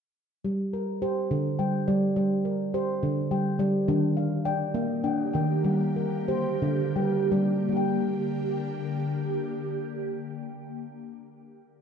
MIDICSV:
0, 0, Header, 1, 3, 480
1, 0, Start_track
1, 0, Key_signature, -2, "minor"
1, 0, Tempo, 572519
1, 376, Time_signature, 6, 3, 24, 8
1, 3735, Tempo, 596421
1, 4695, Tempo, 636267
1, 5175, Tempo, 674157
1, 5655, Tempo, 725514
1, 6135, Tempo, 753769
1, 8766, End_track
2, 0, Start_track
2, 0, Title_t, "Handpan"
2, 0, Program_c, 0, 114
2, 373, Note_on_c, 0, 55, 54
2, 615, Note_on_c, 0, 70, 45
2, 854, Note_on_c, 0, 67, 54
2, 855, Note_off_c, 0, 55, 0
2, 855, Note_on_c, 0, 72, 60
2, 1097, Note_on_c, 0, 50, 71
2, 1332, Note_on_c, 0, 79, 50
2, 1333, Note_on_c, 0, 55, 54
2, 1336, Note_off_c, 0, 70, 0
2, 1336, Note_off_c, 0, 72, 0
2, 1475, Note_off_c, 0, 50, 0
2, 1564, Note_off_c, 0, 55, 0
2, 1573, Note_on_c, 0, 74, 54
2, 1574, Note_on_c, 0, 55, 71
2, 1576, Note_off_c, 0, 67, 0
2, 1764, Note_off_c, 0, 55, 0
2, 1813, Note_on_c, 0, 55, 65
2, 2054, Note_off_c, 0, 79, 0
2, 2054, Note_on_c, 0, 70, 45
2, 2294, Note_off_c, 0, 55, 0
2, 2294, Note_off_c, 0, 74, 0
2, 2298, Note_on_c, 0, 67, 55
2, 2299, Note_on_c, 0, 72, 61
2, 2539, Note_on_c, 0, 50, 71
2, 2774, Note_off_c, 0, 70, 0
2, 2776, Note_off_c, 0, 72, 0
2, 2776, Note_on_c, 0, 55, 60
2, 2777, Note_on_c, 0, 79, 48
2, 2914, Note_off_c, 0, 50, 0
2, 3003, Note_off_c, 0, 55, 0
2, 3013, Note_on_c, 0, 55, 79
2, 3014, Note_on_c, 0, 74, 51
2, 3015, Note_off_c, 0, 67, 0
2, 3201, Note_off_c, 0, 55, 0
2, 3254, Note_on_c, 0, 62, 60
2, 3256, Note_on_c, 0, 51, 75
2, 3443, Note_off_c, 0, 51, 0
2, 3493, Note_off_c, 0, 74, 0
2, 3494, Note_off_c, 0, 79, 0
2, 3494, Note_on_c, 0, 77, 49
2, 3734, Note_on_c, 0, 79, 60
2, 3735, Note_off_c, 0, 62, 0
2, 3735, Note_on_c, 0, 74, 55
2, 3967, Note_on_c, 0, 58, 74
2, 4195, Note_off_c, 0, 79, 0
2, 4205, Note_on_c, 0, 62, 61
2, 4205, Note_on_c, 0, 79, 48
2, 4207, Note_off_c, 0, 77, 0
2, 4345, Note_off_c, 0, 58, 0
2, 4433, Note_off_c, 0, 79, 0
2, 4443, Note_on_c, 0, 79, 53
2, 4449, Note_off_c, 0, 74, 0
2, 4454, Note_on_c, 0, 51, 73
2, 4646, Note_off_c, 0, 51, 0
2, 4691, Note_on_c, 0, 55, 63
2, 4694, Note_off_c, 0, 62, 0
2, 4929, Note_off_c, 0, 79, 0
2, 4933, Note_on_c, 0, 70, 47
2, 5173, Note_off_c, 0, 55, 0
2, 5174, Note_on_c, 0, 72, 61
2, 5175, Note_on_c, 0, 67, 54
2, 5415, Note_on_c, 0, 50, 72
2, 5654, Note_on_c, 0, 79, 46
2, 5655, Note_off_c, 0, 72, 0
2, 5656, Note_off_c, 0, 70, 0
2, 5656, Note_on_c, 0, 55, 62
2, 5794, Note_off_c, 0, 50, 0
2, 5885, Note_off_c, 0, 55, 0
2, 5890, Note_off_c, 0, 67, 0
2, 5891, Note_on_c, 0, 74, 48
2, 5893, Note_on_c, 0, 55, 74
2, 6084, Note_off_c, 0, 55, 0
2, 6137, Note_on_c, 0, 55, 50
2, 6161, Note_on_c, 0, 67, 53
2, 6180, Note_off_c, 0, 79, 0
2, 6188, Note_on_c, 0, 79, 54
2, 6376, Note_off_c, 0, 74, 0
2, 8315, Note_off_c, 0, 55, 0
2, 8340, Note_off_c, 0, 67, 0
2, 8367, Note_off_c, 0, 79, 0
2, 8766, End_track
3, 0, Start_track
3, 0, Title_t, "Ambient pad"
3, 0, Program_c, 1, 92
3, 3253, Note_on_c, 1, 51, 69
3, 3256, Note_on_c, 1, 58, 67
3, 3256, Note_on_c, 1, 67, 80
3, 4681, Note_off_c, 1, 51, 0
3, 4686, Note_on_c, 1, 50, 67
3, 6111, Note_off_c, 1, 58, 0
3, 6112, Note_off_c, 1, 67, 0
3, 6118, Note_off_c, 1, 50, 0
3, 6133, Note_on_c, 1, 67, 76
3, 6134, Note_on_c, 1, 58, 61
3, 6136, Note_on_c, 1, 50, 71
3, 8287, Note_off_c, 1, 58, 0
3, 8287, Note_off_c, 1, 67, 0
3, 8289, Note_off_c, 1, 50, 0
3, 8766, End_track
0, 0, End_of_file